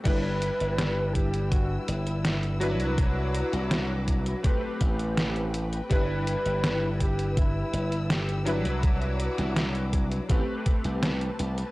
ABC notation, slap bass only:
X:1
M:4/4
L:1/16
Q:1/4=82
K:G
V:1 name="Slap bass" clef=bass
G,,,2 z G,,,6 z G,,,4- G,,, C,,- | C,,2 z C,,4 z3 A,,,4- A,,, z | G,,,2 z G,,,6 z G,,,4- G,,, C,,- | C,,2 z C,,4 z A,,, z2 C,,2 z C,, z |]